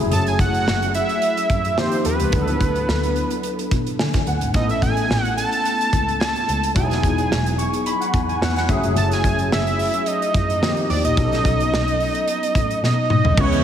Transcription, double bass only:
0.11 0.34 F#1 medium
0.39 0.62 F#1 medium
0.67 0.90 F#1 medium
1.50 1.73 F#2 medium
1.77 1.90 D#3 medium
2.05 2.18 D#2 medium
2.20 2.31 C#2 medium
2.33 2.56 D2 medium
2.60 2.84 D2 medium
2.88 3.12 D2 medium
3.71 3.95 B2 medium
3.99 4.12 D3 medium
4.27 4.39 D2 medium
4.41 4.52 G#1 medium
4.54 4.78 A1 medium
4.82 5.05 A1 medium
5.10 5.33 A1 medium
5.93 6.29 C#2 medium
6.48 6.71 C#2 medium
6.76 6.99 E1 medium
7.03 7.26 E1 medium
7.31 7.54 E1 medium
8.14 8.37 E2 medium
8.41 8.54 E2 medium
8.69 8.81 F#1 medium
8.84 8.94 F1 medium
8.96 9.19 F#1 loud
9.24 9.47 F#1 medium
9.51 9.74 F#1 medium
10.35 10.58 F#2 medium
10.61 10.74 D#3 medium
10.89 11.02 D#2 medium
11.04 11.15 A#1 medium
11.17 11.40 B1 medium
11.45 11.68 B1 medium
11.72 11.95 B1 medium
12.55 12.78 A2 medium
12.82 12.95 B2 medium
13.10 13.23 B2 medium
13.25 13.36 C2 medium
13.38 13.61 C#2 loud

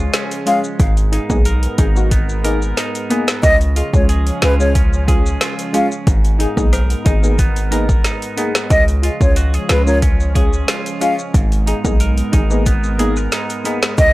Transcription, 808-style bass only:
0.80 1.19 G#1 loud
1.30 1.67 B1 medium
1.79 2.73 G#1 loud
3.43 3.82 C#2 loud
3.94 4.31 C#2 medium
4.42 5.37 C#2 medium
6.07 6.46 G#1 loud
6.57 6.95 B1 medium
7.06 8.01 G#1 loud
8.70 9.10 C#2 loud
9.21 9.58 C#2 medium
9.69 10.64 C#2 medium
11.34 11.73 G#1 loud
11.85 12.22 B1 medium
12.33 13.28 G#1 loud
13.98 14.13 C#2 loud

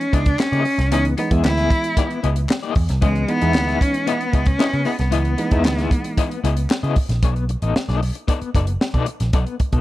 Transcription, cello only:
0.00 0.15 C#4 medium
0.13 0.41 D4 loud
0.40 0.91 C#4 loud
0.91 1.03 C#4 loud
1.17 1.29 B3 medium
1.44 2.19 E4 loud
3.02 3.31 G#3 loud
3.29 3.82 B3 loud
3.81 4.08 C#4 loud
4.07 4.48 B3 loud
4.46 4.87 C#4 loud
4.86 4.98 B3 loud
4.99 6.66 B3 medium

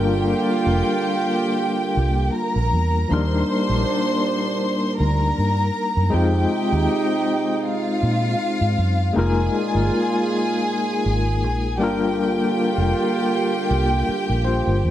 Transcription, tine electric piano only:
0.00 2.67 G3 medium
0.00 2.68 A#3 medium
0.00 2.69 D4 medium
0.00 2.69 F4 medium
0.00 2.70 A#4 medium
3.08 3.16 F3 medium
3.08 6.09 A#3 medium
3.08 6.09 D4 medium
3.08 6.10 D#4 medium
3.13 6.11 G3 medium
3.13 6.10 A#4 medium
6.10 9.10 G#3 medium
6.10 9.11 C4 medium
6.10 9.12 D#4 medium
6.14 9.12 F4 medium
6.14 9.13 C5 medium
9.13 11.75 G#3 medium
9.13 11.76 A#3 medium
9.13 11.77 D#4 medium
9.17 11.78 F4 medium
9.17 11.78 A#4 medium
11.78 14.78 G3 medium
11.78 14.79 A#3 medium
11.78 14.80 D4 medium
11.82 14.46 F4 medium
11.82 14.81 A#4 medium
14.45 14.90 F4 medium
14.45 14.90 C5 medium

